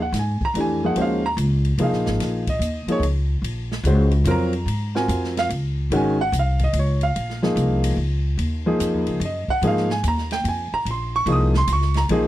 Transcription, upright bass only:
Already playing: D#2
0.12 G#2
0.41 muted upright bass stroke
0.54 F2
0.96 D#2
1.37 C#2
1.78 C2
1.92 A#1
2.06 G#1
2.20 A#1
2.59 D#2
2.86 muted upright bass stroke
3.00 C#2
3.42 A#1
3.83 C#2
4.24 F2
4.66 G#2
5.08 F2
5.49 C#2
5.90 G#1
6.32 C2
6.73 C#2
7.16 A#1
7.56 C2
7.97 C#2
8.38 D#2
8.80 F2
8.94 D#2
9.07 C#2
9.20 F#2
9.48 muted upright bass stroke
9.62 G#2
10.03 D#2
10.44 F2
10.72 muted upright bass stroke
10.85 A#1
11.26 C2
11.68 C#2
12.09 A#1

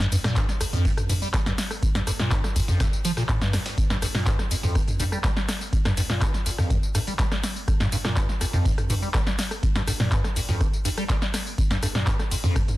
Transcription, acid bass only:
0.00 G2
0.12 G2
0.24 A#2
0.36 G2
0.61 F2
0.73 F2
0.85 G2
1.09 G2
1.22 G3
1.34 G3
1.46 G2
1.95 G2
2.07 G2
2.19 A#2
2.32 G2
2.56 F2
2.68 F2
2.80 G2
3.05 F3
3.17 A#2
3.29 A2
3.42 G2
3.54 F2
3.90 G2
4.02 G2
4.15 A#2
4.27 G2
4.51 F2
4.63 F2
4.75 G2
5.00 G2
5.12 G3
5.24 G3
5.37 G3
5.85 G2
5.97 G2
6.10 A#2
6.22 G2
6.46 F2
6.58 F2
6.70 G2
6.95 G2
7.07 G3
7.19 G3
7.32 G3
7.80 G2
7.92 G2
8.05 A#2
8.17 G2
8.41 F2
8.54 F2
8.65 G2
8.90 G2
9.02 G3
9.14 G3
9.27 G3
9.75 G2
9.87 G2
10.00 A#2
10.12 G2
10.36 F2
10.49 F2
10.61 G2
10.85 G2
10.97 G3
11.10 G3
11.22 G3
11.70 G2
11.83 G2
11.95 A#2
12.07 G2
12.31 F2
12.44 F2
12.56 G2

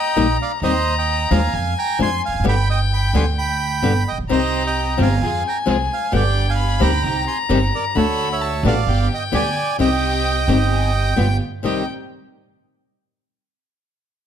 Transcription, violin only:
Already playing: A#5
0.62 A#5
1.54 G#5
2.45 G5
4.28 A#5
5.21 G#5
6.12 G5
6.57 B5
7.03 A#5
7.95 B5
8.41 A5
8.87 G5
9.79 G5
10.71 G#5
10.94 G5
11.64 G5

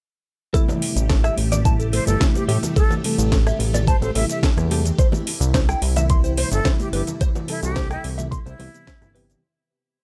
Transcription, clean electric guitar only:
0.54 A4
1.10 A4
1.24 E5
1.52 D5
1.65 A5
1.79 A4
1.93 A4
2.20 A4
2.49 G4
2.76 A4
3.32 A4
3.47 E5
3.75 D5
3.88 A5
4.03 A4
4.16 A4
4.44 A4
4.72 G4
4.99 C5
5.55 C5
5.69 G5
5.97 E5
6.10 C6
6.24 C5
6.38 C5
6.65 C5
6.93 B4
7.21 C5
7.76 C5
7.91 G5
8.18 E5
8.31 C6
8.46 C5
8.59 C5
8.87 C5
9.15 B4

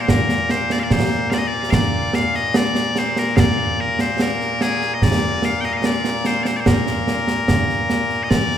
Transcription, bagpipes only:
Already playing: A#2 A#3
0.01 C5
0.10 A#4
0.51 C5
0.72 D5
0.79 F5
0.83 D5
0.92 C5
1.30 D5 F5
1.38 D#5
1.47 D5
1.70 D5 F5
2.15 F5
2.35 D#5
2.56 D5
2.98 C5
3.19 A#4
3.36 D5 F5
3.81 A#4
4.01 C5
4.22 A#4
4.62 G#4
4.94 D#5
5.03 D5
5.45 F5
5.61 D#5 G5
5.73 F5
5.77 D#5
5.86 D5
6.26 C5
6.43 C5 D5
6.56 C5 D5
6.67 A#4
8.24 D#5
8.30 D5

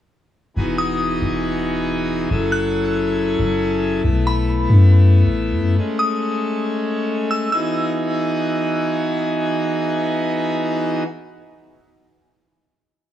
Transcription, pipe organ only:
0.57 E3 B3 D#4 F#4 G#4
2.30 F#3 C#4 E4 A4
4.04 A3 B3
5.78 G#3 C#4
7.52 E3 B3 D#4 F#4 G#4

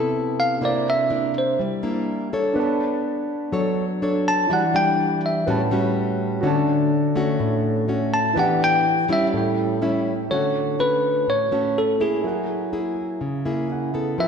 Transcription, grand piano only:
Already playing: A4 B4 E5 G5
0.59 D4 A#4 C5
0.64 E5
2.53 D4 B4 C#5
2.59 A5
4.47 E4
4.51 D5 F#6
5.46 B4 C#5 F#5 A5
6.41 D4 F#4 C#5
6.47 A5
8.33 E4 B4 D5
8.39 G5
9.31 E4 A4
9.36 C#5 G5
9.82 E5
10.30 A4 C#5
10.34 F#5
11.52 A4 C#5 A5
12.21 E4 G#4 A#4
12.27 F#5
13.68 E4 F#5
14.17 A4 B4 E5
14.22 G5

